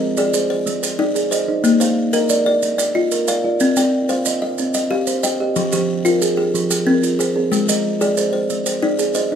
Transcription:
0.00 0.17 G#3 medium
0.00 0.34 A#4 medium
0.00 0.34 D#5 medium
0.17 0.50 G#4 medium
0.17 0.66 D5 medium
0.17 maracas medium
0.34 0.83 G#4 medium
0.34 0.67 C5 medium
0.34 maracas medium
0.50 0.82 C5 medium
0.66 0.99 G#3 medium
0.66 maracas medium
0.83 1.30 C5 medium
0.83 maracas medium
0.99 1.32 D#4 medium
0.99 1.48 D5 medium
1.15 1.48 G#4 medium
1.15 maracas medium
1.31 1.64 C5 medium
1.31 1.81 D#5 medium
1.31 maracas medium
1.48 1.81 D#4 medium
1.48 1.97 C5 medium
1.64 1.97 A#3 medium
1.64 maracas medium
1.80 2.14 A#3 medium
1.80 2.29 C5 medium
1.80 2.30 F5 medium
1.80 maracas medium
2.13 2.46 A#4 medium
2.13 2.62 D#5 medium
2.13 maracas medium
2.29 2.79 A#4 medium
2.29 2.62 D5 medium
2.29 maracas medium
2.46 2.77 D5 medium
2.63 2.95 A#3 medium
2.63 maracas medium
2.78 3.27 D5 medium
2.78 maracas medium
2.95 3.28 F4 medium
2.95 3.44 D#5 medium
3.12 3.44 A#4 medium
3.12 maracas medium
3.28 3.61 D5 medium
3.28 3.77 F5 medium
3.28 maracas medium
3.44 3.77 F4 medium
3.44 3.93 D5 medium
3.60 3.93 C4 medium
3.60 maracas medium
3.76 4.09 C4 medium
3.76 4.26 D5 medium
3.76 4.26 G5 medium
3.76 maracas medium
4.09 4.42 C5 medium
4.09 4.59 F5 medium
4.09 maracas medium
4.25 4.75 C5 medium
4.25 4.59 D#5 medium
4.25 maracas medium
4.42 4.73 D#5 medium
4.58 4.91 C4 medium
4.58 maracas medium
4.74 5.22 D#5 medium
4.74 maracas medium
4.91 5.23 G4 medium
4.91 5.40 F5 medium
5.07 5.40 C5 medium
5.07 maracas medium
5.23 5.56 D#5 medium
5.23 5.73 G5 medium
5.23 maracas medium
5.40 5.73 G4 medium
5.40 5.89 D#5 medium
5.56 5.89 F3 medium
5.56 maracas soft
5.72 6.05 F3 medium
5.72 6.22 G4 medium
5.72 6.22 C5 medium
5.72 maracas medium
6.05 6.38 F4 medium
6.05 6.54 A#4 medium
6.05 maracas medium
6.22 6.71 F4 medium
6.22 6.54 G#4 medium
6.22 maracas medium
6.37 6.69 G#4 medium
6.54 6.87 F3 medium
6.54 maracas medium
6.71 7.18 G#4 medium
6.71 maracas medium
6.87 7.19 C4 medium
6.87 7.36 A#4 medium
7.03 7.36 F4 medium
7.03 maracas medium
7.19 7.52 G#4 medium
7.19 7.68 C5 medium
7.19 maracas medium
7.36 7.68 C4 medium
7.36 7.85 G#4 medium
7.52 7.84 G#3 medium
7.52 maracas medium
7.68 8.01 G#3 medium
7.68 8.17 A#4 medium
7.68 8.17 D#5 medium
7.68 maracas medium
8.01 8.34 G#4 medium
8.01 8.50 D5 medium
8.01 maracas medium
8.17 8.66 G#4 medium
8.17 8.50 C5 medium
8.17 maracas medium
8.33 8.65 C5 medium
8.50 8.82 G#3 medium
8.50 maracas medium
8.66 9.14 C5 medium
8.66 maracas medium
8.82 9.15 D#4 medium
8.82 9.31 D5 medium
8.99 9.31 G#4 medium
8.99 maracas medium
9.15 9.35 C5 medium
9.15 9.35 D#5 medium
9.15 maracas medium
9.32 9.35 D#4 medium
9.32 9.35 C5 medium

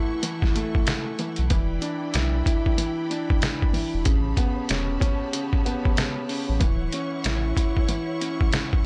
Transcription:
0.00 0.21 E3 loud
0.00 0.53 A3 medium
0.00 1.47 E4 medium
0.00 1.52 E4 medium
0.00 1.48 A4 medium
0.00 1.47 F#5 medium
0.00 1.47 C#6 loud
0.23 1.17 E3 medium
0.23 closed hi-hat loud
0.42 kick loud
0.42 snare soft
0.55 1.51 A3 medium
0.55 closed hi-hat medium
0.75 kick medium
0.87 snare loud
0.87 snare medium
0.87 closed hi-hat medium
1.19 1.49 E3 medium
1.19 closed hi-hat medium
1.36 1.49 B1 medium
1.36 closed hi-hat medium
1.50 1.79 E1 loud
1.50 2.76 E3 medium
1.50 4.03 E4 medium
1.50 4.03 D5 medium
1.50 4.03 G5 medium
1.50 6.57 B5 medium
1.50 kick loud
1.50 closed hi-hat medium
1.81 3.09 D4 medium
1.81 closed hi-hat medium
2.14 2.43 B1 medium
2.14 2.44 E4 medium
2.14 snare loud
2.14 snare medium
2.14 closed hi-hat medium
2.45 3.73 E4 medium
2.45 kick loud
2.45 closed hi-hat medium
2.66 kick medium
2.78 3.72 E3 medium
2.78 closed hi-hat loud
3.10 4.06 D4 medium
3.10 closed hi-hat medium
3.30 kick loud
3.42 snare loud
3.42 snare medium
3.42 closed hi-hat medium
3.62 kick loud
3.73 4.05 E3 medium
3.73 open hi-hat medium
3.94 4.04 E1 medium
4.05 4.34 A1 loud
4.05 5.31 C#3 loud
4.05 6.59 G4 medium
4.05 6.59 C#5 medium
4.05 6.59 A5 medium
4.05 kick loud
4.05 closed hi-hat medium
4.37 5.64 B3 medium
4.37 kick medium
4.37 closed hi-hat medium
4.69 4.98 E1 loud
4.69 4.99 C#4 medium
4.69 snare loud
4.69 snare medium
4.69 closed hi-hat medium
5.00 6.28 C#4 medium
5.00 kick loud
5.00 closed hi-hat medium
5.32 6.27 C#3 medium
5.32 closed hi-hat loud
5.53 kick medium
5.66 6.61 B3 medium
5.66 closed hi-hat medium
5.85 kick loud
5.97 snare loud
5.97 snare medium
5.97 closed hi-hat medium
6.28 6.61 C#3 medium
6.28 open hi-hat medium
6.49 6.60 A1 medium
6.60 6.89 D1 loud
6.60 7.87 E3 medium
6.60 8.86 E4 medium
6.60 8.86 C#5 medium
6.60 8.86 F#5 medium
6.60 8.86 C#6 loud
6.60 kick loud
6.60 closed hi-hat medium
6.92 8.20 C#4 medium
6.92 closed hi-hat medium
7.24 7.53 A1 loud
7.24 7.56 E4 medium
7.24 snare loud
7.24 snare medium
7.24 closed hi-hat medium
7.57 8.85 E4 medium
7.57 kick loud
7.57 closed hi-hat medium
7.77 kick medium
7.88 8.83 E3 medium
7.88 closed hi-hat loud
8.21 8.86 C#4 medium
8.21 closed hi-hat medium
8.41 kick loud
8.53 snare loud
8.53 snare medium
8.53 closed hi-hat medium
8.73 kick loud

